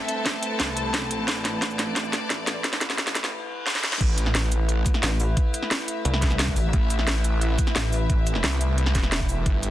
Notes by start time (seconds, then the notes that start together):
Already playing: A3 C4 E4 A4 B4 E5 A5
0.08 closed hi-hat
0.26 kick, snare, closed hi-hat
0.43 closed hi-hat
0.60 C2, kick, snare, closed hi-hat
0.77 closed hi-hat
0.94 kick, snare, closed hi-hat
1.11 A1, closed hi-hat
1.28 kick, snare, closed hi-hat
1.36 D5, cabasa
1.45 snare, closed hi-hat, cabasa
1.62 A1, kick, snare, closed hi-hat
1.71 cabasa
1.79 snare, closed hi-hat, cabasa
1.96 kick, snare, closed hi-hat
2.05 cabasa
2.13 snare, closed hi-hat, cabasa
2.30 A1, kick, snare, closed hi-hat
2.47 snare, closed hi-hat, cabasa
2.64 A1, kick, snare, closed hi-hat
2.73 snare, cabasa
2.81 snare, closed hi-hat, cabasa
2.90 snare
2.98 kick, snare, closed hi-hat
3.07 snare, cabasa
3.15 A1, snare, closed hi-hat, cabasa
3.24 snare
3.32 reverse cymbal
3.66 snare
3.75 snare
3.84 snare
3.92 snare
4.01 A1 A3 E4 B4, kick, closed hi-hat, crash
4.18 closed hi-hat, cabasa
4.26 snare
4.35 A1, snare, closed hi-hat
4.43 cabasa
4.50 E5, closed hi-hat, cabasa
4.69 closed hi-hat
4.86 kick, closed hi-hat, cabasa
4.94 snare, cabasa
5.03 A1, snare, closed hi-hat
5.11 cabasa
5.20 open hi-hat, cabasa
5.37 kick, closed hi-hat
5.54 closed hi-hat, cabasa
5.63 snare
5.71 snare, closed hi-hat
5.80 cabasa
5.88 closed hi-hat, cabasa
6.05 C2, closed hi-hat
6.14 snare
6.22 kick, snare, closed hi-hat, cabasa
6.31 snare, cabasa
6.39 snare, closed hi-hat
6.48 kick, cabasa
6.56 A1, open hi-hat, cabasa
6.73 A1, kick, closed hi-hat
6.90 closed hi-hat, cabasa
6.99 snare
7.07 A1, snare, closed hi-hat
7.16 cabasa
7.24 closed hi-hat, cabasa
7.41 closed hi-hat
7.58 kick, closed hi-hat, cabasa
7.67 snare, cabasa
7.76 A1, snare, closed hi-hat
7.84 cabasa
7.93 open hi-hat, cabasa
8.10 A1, kick, closed hi-hat
8.27 closed hi-hat, cabasa
8.35 snare
8.44 C2, snare, closed hi-hat
8.52 cabasa
8.61 closed hi-hat, cabasa
8.78 closed hi-hat
8.86 snare
8.95 E1, kick, snare, closed hi-hat, cabasa
9.03 snare, cabasa
9.12 snare, closed hi-hat
9.20 kick, cabasa
9.29 open hi-hat, cabasa
9.46 G1 G3 B3 D4 A4, kick, closed hi-hat
9.61 G4, closed hi-hat, cabasa